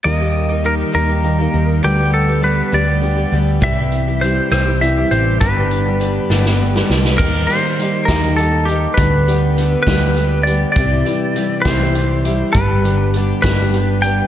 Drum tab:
CC |------------|------------|------------|------------|
HH |------------|------------|x-x-x-x-x-x-|x-x-x-------|
SD |------------|------------|------r-----|------oo-ooo|
BD |------------|------------|o-----------|o-----------|

CC |x-----------|------------|------------|------------|
HH |--x-x-x-x-x-|x-x-x-x-x-x-|x-x-x-x-x-x-|x-x-x-x-x-x-|
SD |------o-----|------o-----|------o-----|------o-----|
BD |o-----o-----|o-----o-----|o-----o-----|o-----o-----|